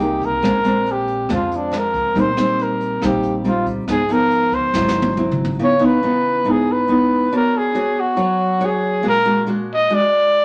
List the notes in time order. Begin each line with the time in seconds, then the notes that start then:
Already playing: C2 C3 G4
0.00 A#3 D#4 G#4, closed hi-hat
0.22 A#4, kick, closed hi-hat
0.42 A#1 A#2 G#3 C4 D4, kick, cross-stick, closed hi-hat
0.64 G#3 C4 D4, closed hi-hat
0.86 closed hi-hat
0.92 G4
1.08 closed hi-hat
1.29 F2 F3 G#3 C4 D4, kick, cross-stick, closed hi-hat
1.34 F4
1.51 closed hi-hat
1.56 D4
1.71 G#3 C4 D4, cross-stick, closed hi-hat
1.79 A#4
1.94 kick, closed hi-hat
2.15 A#1 A#2 G3 C4 D#4, kick, closed hi-hat
2.20 C5
2.37 G3 C4 D#4, cross-stick, closed hi-hat
2.59 A#4, closed hi-hat
2.80 closed hi-hat
3.02 A#1 A#2 G3 C4 D#4, kick, cross-stick, closed hi-hat
3.06 G4
3.23 closed hi-hat
3.44 G3 C4 D#4 F4, closed hi-hat
3.66 kick, closed hi-hat
3.87 G#1 G#2 F3 B3 D#4 G#4, kick, cross-stick, closed hi-hat
4.09 F3 B3 D#4 A#4, closed hi-hat
4.31 closed hi-hat
4.52 C5, kick, closed hi-hat
4.74 G#1 G#2 F#3 C4 E4, kick, snare
4.88 snare
5.02 high tom
5.17 F#3 C4 E4, mid tom
5.31 mid tom
5.45 floor tom
5.59 C#3 E3 B3 D#4
5.64 C#5
5.79 E3 B3 D#4
5.85 B4
6.03 E3 B3 D#4
6.44 G#2 E3 B3 D#4
6.51 G#4
6.72 B4
6.88 E3 B3 D#4
7.32 B3 D4 F#4 C#5
7.36 A#4
7.58 G#4
7.75 D4 F#4 C#5
8.00 F#4
8.17 F#3 D4 F#4 C#5
8.60 D4 F#4 C#5
8.65 G#4
9.02 A#2 G#3 D4 F#4
9.09 A#4
9.25 G#3 D4 F#4
9.46 G#3 D4 F#4
9.74 D#5
9.90 G#3 D4 F#4
9.94 D5